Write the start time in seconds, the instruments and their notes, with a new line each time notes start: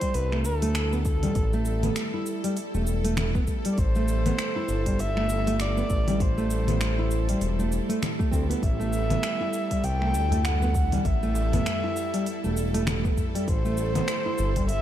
Already playing: synth drone G3 E4 A4, kamancheh C5
0.01 nylon-string guitar G3, kick, open hi-hat, shaker
0.14 analog synth bass C2, kamancheh B4, open hi-hat, shaker
0.32 nylon-string guitar A3, finger snap
0.45 analog synth bass D2, kamancheh A4, shaker
0.62 nylon-string guitar A3, open hi-hat, shaker
0.75 finger snap, open hi-hat, shaker
0.93 nylon-string guitar B3, shaker
1.05 kamancheh A4, kick, shaker
1.23 nylon-string guitar G3, open hi-hat, low conga, shaker
1.35 analog synth bass A1, kick, open hi-hat, shaker
1.53 nylon-string guitar A3, shaker
1.65 shaker
1.83 nylon-string guitar B3, open hi-hat, low conga, shaker
1.96 finger snap, open hi-hat, shaker
2.14 nylon-string guitar E4
2.26 shaker
2.44 nylon-string guitar G3, open hi-hat, shaker
2.57 open hi-hat, shaker
2.74 analog synth bass E1, nylon-string guitar A3, shaker
2.87 shaker
3.04 nylon-string guitar A3, open hi-hat, shaker
3.17 finger snap, open hi-hat, low conga, shaker
3.35 nylon-string guitar B3, kick, shaker
3.47 kick, shaker
3.65 nylon-string guitar G3, open hi-hat, shaker
3.73 kamancheh D5
3.78 analog synth bass A1, kamancheh C5, kick, open hi-hat, shaker
3.95 nylon-string guitar A3, shaker
4.08 shaker
4.26 nylon-string guitar B3, open hi-hat, low conga, shaker
4.39 finger snap, open hi-hat, shaker
4.56 nylon-string guitar E4
4.69 analog synth bass G1, shaker
4.86 nylon-string guitar G3, kick, open hi-hat, shaker
4.99 kamancheh E5, open hi-hat, shaker
5.17 nylon-string guitar A3, finger snap
5.29 shaker
5.47 nylon-string guitar A3, open hi-hat, shaker
5.60 kamancheh D5, finger snap, open hi-hat, shaker
5.77 nylon-string guitar B3, shaker
5.90 analog synth bass A1, kick, shaker
6.08 nylon-string guitar G3, open hi-hat, low conga, shaker
6.20 kamancheh C5, kick, open hi-hat, shaker
6.38 nylon-string guitar A3, shaker
6.51 shaker
6.68 nylon-string guitar B3, open hi-hat, low conga, shaker
6.81 finger snap, open hi-hat, shaker
6.99 nylon-string guitar E4
7.11 shaker
7.29 nylon-string guitar G3, open hi-hat, shaker
7.41 analog synth bass E1, open hi-hat, shaker
7.59 nylon-string guitar A3, shaker
7.72 shaker
7.89 nylon-string guitar A3, open hi-hat, shaker
8.03 finger snap, open hi-hat, low conga, shaker
8.19 nylon-string guitar A3, kick, shaker
8.31 analog synth bass D2, nylon-string guitar C4, kick, shaker
8.49 nylon-string guitar B3, open hi-hat, shaker
8.63 analog synth bass A1, synth drone A4, kamancheh E5, kick, open hi-hat, shaker
8.80 nylon-string guitar A3, shaker
8.93 shaker
9.10 nylon-string guitar B3, open hi-hat, darbuka tek, low conga, shaker
9.23 finger snap, open hi-hat, shaker
9.41 nylon-string guitar E4, darbuka tek
9.53 shaker
9.71 nylon-string guitar G3, kick, open hi-hat, darbuka tek, shaker
9.84 analog synth bass C2, kamancheh G5, open hi-hat, shaker
10.01 nylon-string guitar A3, finger snap
10.14 analog synth bass D2, darbuka ka, shaker
10.31 nylon-string guitar A3, open hi-hat, darbuka tek, darbuka dum, shaker
10.45 kamancheh F#5, finger snap, open hi-hat, shaker
10.62 nylon-string guitar B3, shaker
10.75 kick, darbuka tek, shaker
10.92 nylon-string guitar G3, open hi-hat, low conga, shaker
11.05 analog synth bass A1, kamancheh E5, kick, open hi-hat, shaker
11.23 nylon-string guitar A3, shaker
11.35 darbuka ka, shaker
11.53 nylon-string guitar B3, open hi-hat, darbuka tek, darbuka dum, low conga, shaker
11.66 finger snap, open hi-hat, shaker
11.84 nylon-string guitar E4, darbuka tek
11.96 darbuka ka, shaker
12.14 nylon-string guitar G3, open hi-hat, darbuka tek, shaker
12.26 open hi-hat, shaker
12.44 analog synth bass E1, nylon-string guitar A3, shaker
12.57 shaker
12.74 nylon-string guitar A3, open hi-hat, darbuka tek, shaker
12.87 finger snap, open hi-hat, low conga, shaker
13.04 nylon-string guitar B3, kick, shaker
13.17 kick, darbuka dum, shaker
13.35 nylon-string guitar G3, open hi-hat, shaker
13.48 analog synth bass A1, kamancheh C5, kick, open hi-hat, shaker
13.65 nylon-string guitar A3, shaker
13.77 shaker
13.95 nylon-string guitar B3, open hi-hat, darbuka tek, low conga, shaker
14.08 finger snap, open hi-hat, shaker
14.26 nylon-string guitar E4, darbuka tek
14.38 analog synth bass G1, shaker
14.56 nylon-string guitar G3, kick, open hi-hat, darbuka tek, shaker
14.69 kamancheh E5, open hi-hat, shaker